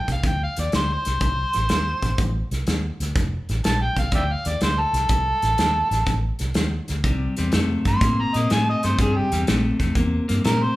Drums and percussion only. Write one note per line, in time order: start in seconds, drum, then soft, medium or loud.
0.08 kick medium
0.08 snare soft
0.08 closed hi-hat medium
0.23 kick loud
0.23 snare soft
0.23 closed hi-hat medium
0.56 snare soft
0.56 closed hi-hat medium
0.72 snare loud
0.72 closed hi-hat medium
1.05 snare soft
1.05 closed hi-hat medium
1.21 kick loud
1.21 closed hi-hat medium
1.53 snare soft
1.53 closed hi-hat medium
1.69 snare loud
1.69 closed hi-hat medium
2.03 kick medium
2.03 snare soft
2.03 closed hi-hat medium
2.18 kick loud
2.18 closed hi-hat medium
2.51 snare soft
2.51 closed hi-hat medium
2.67 snare medium
2.67 closed hi-hat medium
3.00 snare soft
3.00 closed hi-hat medium
3.16 kick loud
3.16 snare soft
3.16 closed hi-hat medium
3.49 snare soft
3.49 closed hi-hat medium
3.64 snare loud
3.64 closed hi-hat medium
3.96 kick medium
3.96 snare soft
3.96 closed hi-hat medium
4.12 kick loud
4.12 closed hi-hat medium
4.45 snare soft
4.45 closed hi-hat medium
4.61 snare medium
4.61 closed hi-hat medium
4.94 snare soft
4.94 closed hi-hat medium
5.09 kick loud
5.09 closed hi-hat medium
5.42 snare soft
5.42 closed hi-hat medium
5.58 snare loud
5.58 closed hi-hat medium
5.91 snare soft
5.91 closed hi-hat medium
6.06 kick medium
6.06 snare soft
6.06 closed hi-hat medium
6.39 snare soft
6.39 closed hi-hat medium
6.54 snare loud
6.54 closed hi-hat medium
6.88 snare soft
6.88 closed hi-hat medium
7.04 kick loud
7.04 closed hi-hat medium
7.37 snare soft
7.37 closed hi-hat soft
7.52 snare loud
7.52 closed hi-hat medium
7.85 kick medium
7.85 snare soft
7.85 closed hi-hat medium
8.01 kick loud
8.01 snare soft
8.01 closed hi-hat medium
8.34 snare soft
8.34 closed hi-hat medium
8.50 snare medium
8.50 closed hi-hat medium
8.83 snare soft
8.83 closed hi-hat medium
8.99 kick loud
8.99 closed hi-hat medium
9.32 snare soft
9.32 closed hi-hat medium
9.47 snare loud
9.47 closed hi-hat medium
9.80 kick medium
9.80 snare soft
9.80 closed hi-hat soft
9.95 kick medium
9.95 closed hi-hat medium
10.29 snare soft
10.29 closed hi-hat medium
10.45 snare loud
10.45 closed hi-hat medium